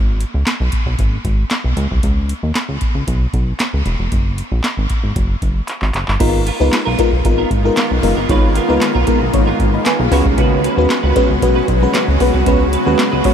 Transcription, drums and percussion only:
0.21 closed hi-hat
0.47 snare, clap, closed hi-hat
0.72 kick, closed hi-hat
0.99 kick, closed hi-hat
1.25 kick, closed hi-hat
1.50 snare, clap, closed hi-hat
1.77 closed hi-hat
1.91 kick
2.03 kick, closed hi-hat
2.29 closed hi-hat
2.55 snare, clap, closed hi-hat
2.81 kick, closed hi-hat
3.07 kick, closed hi-hat
3.33 kick, closed hi-hat
3.59 snare, clap, closed hi-hat
3.86 closed hi-hat
4.12 kick, closed hi-hat
4.38 closed hi-hat
4.64 snare, clap, closed hi-hat
4.90 kick, closed hi-hat
5.16 kick, closed hi-hat
5.42 kick, closed hi-hat
5.68 clap, closed hi-hat
5.82 clap
5.94 clap, closed hi-hat
6.08 clap
6.20 kick, closed hi-hat, crash
6.47 closed hi-hat
6.73 snare, clap, closed hi-hat
6.99 kick, closed hi-hat
7.25 kick, closed hi-hat
7.51 kick, closed hi-hat
7.77 snare, clap, closed hi-hat
8.03 open hi-hat
8.29 kick, closed hi-hat
8.55 closed hi-hat
8.81 snare, clap, closed hi-hat
9.07 kick, closed hi-hat
9.33 kick, closed hi-hat
9.59 kick, closed hi-hat
9.85 snare, clap, closed hi-hat
10.12 open hi-hat
10.26 kick
10.38 kick, closed hi-hat
10.64 closed hi-hat
10.90 snare, clap, closed hi-hat
11.16 kick, closed hi-hat
11.42 kick, closed hi-hat
11.68 kick, closed hi-hat
11.94 snare, clap, closed hi-hat
12.20 open hi-hat
12.46 kick, closed hi-hat
12.73 closed hi-hat
12.99 snare, clap, closed hi-hat
13.24 kick, open hi-hat

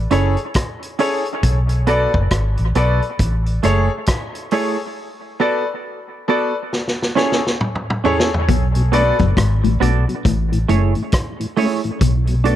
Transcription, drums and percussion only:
0.11 closed hi-hat
0.37 closed hi-hat
0.54 kick, cross-stick, closed hi-hat
0.83 closed hi-hat
0.99 open hi-hat
1.25 closed hi-hat
1.43 kick, closed hi-hat
1.69 closed hi-hat
1.87 closed hi-hat
2.14 kick
2.31 kick, cross-stick, closed hi-hat
2.57 closed hi-hat
2.75 closed hi-hat
3.02 closed hi-hat
3.19 kick, closed hi-hat
3.46 closed hi-hat
3.63 closed hi-hat
4.06 kick, cross-stick, closed hi-hat
4.35 closed hi-hat
4.51 open hi-hat
6.73 snare
6.88 snare
7.02 snare
7.17 snare
7.32 snare
7.47 snare
7.61 mid tom
7.75 mid tom
7.90 mid tom
8.04 floor tom
8.20 snare
8.34 floor tom
8.49 kick, closed hi-hat
8.75 closed hi-hat
8.93 closed hi-hat
9.19 kick, closed hi-hat
9.37 kick, cross-stick, closed hi-hat
9.64 closed hi-hat
9.82 closed hi-hat
10.09 closed hi-hat
10.25 kick, closed hi-hat
10.53 closed hi-hat
10.69 closed hi-hat
10.95 closed hi-hat
11.12 kick, cross-stick, closed hi-hat
11.41 closed hi-hat
11.57 open hi-hat
11.84 closed hi-hat
12.01 kick, closed hi-hat
12.27 closed hi-hat
12.45 closed hi-hat

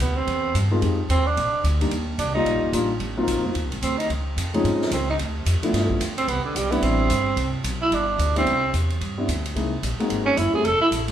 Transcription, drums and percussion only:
0.27 kick, ride
0.55 kick, hi-hat pedal, ride
0.82 kick, ride
1.10 kick, hi-hat pedal, ride
1.37 kick, ride
1.64 kick, hi-hat pedal, ride
1.81 ride
1.91 kick, ride
2.18 kick, hi-hat pedal, ride
2.46 kick, ride
2.73 kick, hi-hat pedal, ride
3.00 kick, ride
3.27 kick, hi-hat pedal, ride
3.55 kick, ride
3.72 ride
3.82 kick, hi-hat pedal, ride
4.00 ride
4.10 kick, ride
4.37 kick, hi-hat pedal, ride
4.54 ride
4.64 kick, ride
4.81 snare
4.91 kick, hi-hat pedal, ride
5.19 kick, ride
5.46 kick, hi-hat pedal, ride
5.63 ride
5.74 kick, snare, ride
5.90 kick
6.01 kick, hi-hat pedal, ride
6.18 ride
6.28 kick, ride
6.55 kick, hi-hat pedal, ride
6.72 ride
6.82 kick, ride
7.10 kick, hi-hat pedal, ride
7.37 kick, ride
7.64 kick, hi-hat pedal, ride
7.91 kick, ride
8.19 kick, hi-hat pedal, ride
8.36 ride
8.46 kick, ride
8.74 kick, hi-hat pedal, ride
8.90 ride
9.01 kick, ride
9.28 kick, hi-hat pedal, ride
9.46 ride
9.56 kick, ride
9.83 kick, hi-hat pedal, ride
10.00 ride
10.10 kick, ride
10.37 kick, hi-hat pedal, ride
10.64 kick, ride
10.91 kick, hi-hat pedal, ride
11.08 snare, ride

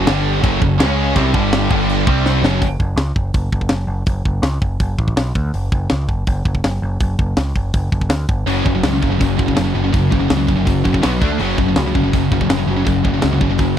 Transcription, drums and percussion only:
0.07 snare, china
0.44 kick, china
0.62 kick
0.80 snare, china
1.16 kick, china
1.34 kick
1.53 snare, china
1.71 kick
1.89 china
2.07 kick
2.26 snare
2.44 snare
2.62 kick, open hi-hat
2.80 kick
2.98 snare, open hi-hat
3.16 kick
3.34 kick, open hi-hat
3.52 kick
3.61 kick
3.69 snare, open hi-hat
4.06 kick, open hi-hat
4.25 kick
4.43 snare, open hi-hat
4.62 kick
4.80 kick, open hi-hat
4.99 kick
5.08 kick
5.17 snare, open hi-hat
5.35 kick
5.54 open hi-hat
5.72 kick
5.90 snare, open hi-hat
6.09 kick
6.27 kick, open hi-hat
6.45 kick
6.55 kick
6.64 snare, open hi-hat
7.00 kick, open hi-hat
7.19 kick
7.37 snare, open hi-hat
7.56 kick
7.74 kick, open hi-hat
7.92 kick
8.01 kick
8.10 snare, open hi-hat
8.29 kick
8.47 open hi-hat
8.66 kick
8.83 snare, open hi-hat
9.02 kick
9.21 kick, open hi-hat
9.39 kick
9.48 kick
9.57 snare, open hi-hat
9.93 kick, open hi-hat
10.12 kick
10.30 snare, open hi-hat
10.48 kick
10.67 kick, open hi-hat
10.85 kick
10.94 kick
11.03 snare, open hi-hat
11.22 kick
11.40 open hi-hat
11.58 kick
11.76 snare, open hi-hat
11.95 kick
12.13 kick, open hi-hat
12.32 kick
12.41 kick
12.50 snare, open hi-hat
12.86 kick, open hi-hat
13.05 kick
13.22 snare, open hi-hat
13.41 kick
13.58 kick, open hi-hat

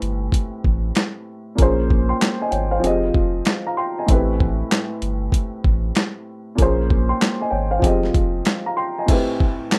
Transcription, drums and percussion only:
0.02 closed hi-hat
0.32 kick, closed hi-hat
0.64 kick
0.95 snare, clap, closed hi-hat
1.58 kick, closed hi-hat
1.90 kick
2.22 snare, clap, closed hi-hat
2.52 closed hi-hat
2.84 closed hi-hat
3.14 kick
3.45 snare, clap, closed hi-hat
4.08 kick, closed hi-hat
4.40 kick
4.71 snare, clap, closed hi-hat
5.02 closed hi-hat
5.32 kick, closed hi-hat
5.64 kick
5.95 snare, clap, closed hi-hat
6.58 kick, closed hi-hat
6.90 kick
7.22 snare, clap, closed hi-hat
7.82 kick, closed hi-hat
8.03 snare
8.14 kick, closed hi-hat
8.45 snare, clap, closed hi-hat
9.08 kick, closed hi-hat, crash
9.40 kick
9.71 snare, clap, closed hi-hat

